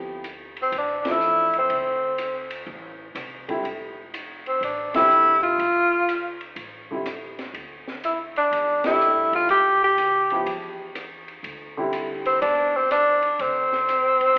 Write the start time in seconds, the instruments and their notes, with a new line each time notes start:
Already playing: upright bass D2, grand piano C3 F3 B3 E4 G4
0.24 hi-hat pedal, ride
0.57 ride
0.62 tenor saxophone C4
0.72 upright bass A1, ride
0.78 tenor saxophone D4
1.00 tenor saxophone D4
1.05 grand piano F3 A3 D4 E4, snare, ride
1.11 tenor saxophone E4
1.21 hi-hat pedal
1.53 ride
1.58 tenor saxophone C4
1.69 upright bass D2, ride
2.18 hi-hat pedal, ride
2.50 ride
2.67 upright bass A1
3.15 upright bass C2, cross-stick, hi-hat pedal, ride
3.48 grand piano D3 G3 C4 E4, ride
3.63 upright bass F1, ride
4.14 hi-hat pedal, ride
4.46 tenor saxophone C4, ride
4.61 upright bass A1, tenor saxophone D4, ride
4.94 grand piano D3 G3 C4 E4, tenor saxophone E4, snare, ride
5.11 hi-hat pedal
5.42 tenor saxophone F4, ride
5.58 upright bass D2, ride
6.09 hi-hat pedal, ride
6.41 ride
6.56 upright bass A1, ride
6.91 grand piano D3 G3 C4 E4
7.06 cross-stick, hi-hat pedal, ride
7.39 snare, ride
7.54 upright bass D2, ride
7.88 snare
8.04 tenor saxophone E4, hi-hat pedal, ride
8.35 tenor saxophone D4, muted upright bass stroke, ride
8.51 upright bass E2, ride
8.84 grand piano A3 D4 E4 G4, tenor saxophone E4, snare, ride
9.01 hi-hat pedal
9.16 upright bass G2
9.32 upright bass C#2, tenor saxophone F4, ride
9.49 upright bass A2, tenor saxophone G4, ride
9.84 tenor saxophone G4
9.97 upright bass C#2, hi-hat pedal, ride
10.30 grand piano F3 B3 E4 G4, ride
10.46 upright bass E2, ride
10.95 cross-stick, hi-hat pedal, ride
11.28 ride
11.43 upright bass D2, ride
11.77 grand piano D3 G3 C4 E4
11.93 hi-hat pedal, ride
12.25 tenor saxophone C4, ride
12.42 upright bass E2, tenor saxophone D4, ride
12.77 tenor saxophone C4
12.91 tenor saxophone D4, cross-stick, hi-hat pedal, ride
13.23 ride
13.39 upright bass D2, tenor saxophone C4, ride
13.72 snare
13.89 hi-hat pedal, ride
14.20 muted upright bass stroke, ride